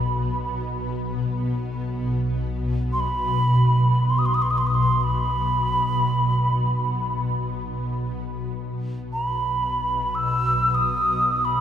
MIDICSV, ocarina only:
0, 0, Header, 1, 2, 480
1, 0, Start_track
1, 0, Key_signature, 5, "major"
1, 0, Tempo, 500000
1, 11142, End_track
2, 0, Start_track
2, 0, Title_t, "Ocarina"
2, 0, Program_c, 0, 79
2, 0, Note_on_c, 0, 83, 79
2, 505, Note_off_c, 0, 83, 0
2, 2810, Note_on_c, 0, 84, 59
2, 2879, Note_on_c, 0, 83, 88
2, 2893, Note_off_c, 0, 84, 0
2, 3934, Note_on_c, 0, 84, 71
2, 3948, Note_off_c, 0, 83, 0
2, 4018, Note_on_c, 0, 87, 75
2, 4032, Note_off_c, 0, 84, 0
2, 4085, Note_on_c, 0, 84, 72
2, 4099, Note_off_c, 0, 87, 0
2, 4169, Note_on_c, 0, 87, 69
2, 4184, Note_off_c, 0, 84, 0
2, 4244, Note_on_c, 0, 84, 64
2, 4258, Note_off_c, 0, 87, 0
2, 4325, Note_on_c, 0, 87, 71
2, 4339, Note_off_c, 0, 84, 0
2, 4396, Note_on_c, 0, 84, 64
2, 4410, Note_off_c, 0, 87, 0
2, 4481, Note_on_c, 0, 87, 65
2, 4495, Note_off_c, 0, 84, 0
2, 4552, Note_on_c, 0, 84, 80
2, 4567, Note_off_c, 0, 87, 0
2, 4803, Note_off_c, 0, 84, 0
2, 4803, Note_on_c, 0, 84, 41
2, 4824, Note_on_c, 0, 83, 80
2, 4839, Note_off_c, 0, 84, 0
2, 6891, Note_off_c, 0, 83, 0
2, 8761, Note_on_c, 0, 83, 74
2, 9742, Note_on_c, 0, 88, 84
2, 9756, Note_off_c, 0, 83, 0
2, 10315, Note_on_c, 0, 87, 81
2, 10330, Note_off_c, 0, 88, 0
2, 10990, Note_on_c, 0, 83, 73
2, 11004, Note_off_c, 0, 87, 0
2, 11142, Note_off_c, 0, 83, 0
2, 11142, End_track
0, 0, End_of_file